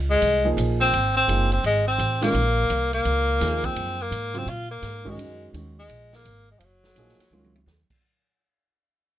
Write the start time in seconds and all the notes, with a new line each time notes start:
Already playing: C#2
0.10 G#3
0.22 C2, ride
0.45 F3 A#3 D#4 G#4
0.57 A#1, hi-hat pedal, ride
0.81 C4, ride
0.92 G#1, ride
1.17 C4
1.28 F#1 F3 A#3 D#4 G#4, hi-hat pedal, ride
1.52 C4, ride
1.64 G#1 G#3, ride
1.88 C4
1.99 A1, hi-hat pedal, ride
2.22 D#3 G#3 A#3 C#4 F4, snare, ride
2.34 A#1, ride
2.70 C2, hi-hat pedal, ride
2.93 A#3, ride
3.05 C#2, ride
3.41 D#2 F3 A#3 D#4 G#4, snare, hi-hat pedal, ride
3.64 C4, kick, ride
3.76 F#2, ride
4.02 A#3
4.11 G#2, hi-hat pedal, ride
4.34 C#3 F#3 C4 F4, ride
4.47 A#2 F4, ride
4.71 A#3
4.82 G#2, snare, hi-hat pedal, ride
5.05 D#3 G#3 C#4 F#4, kick
5.09 G#3
5.18 F#2 D#3 G#3 C#4 F#4, ride
5.54 D#2 D#3 G#3 C#4 F#4, hi-hat pedal, ride
5.79 G#3
5.89 A#1, ride
6.13 A#3, snare
6.25 G#1, hi-hat pedal, ride
6.51 G#3
6.59 F#1 F3, ride
6.65 F#3
6.84 snare
6.96 A#1 F3 A#3 D#4 G#4, hi-hat pedal, ride
7.09 snare
7.19 muted upright bass stroke, snare, ride
7.31 C#2 D#3 G#3 C#4 F4, high tom
7.44 high tom
7.56 high tom
7.66 D#2, snare, hi-hat pedal
7.90 muted upright bass stroke, kick, crash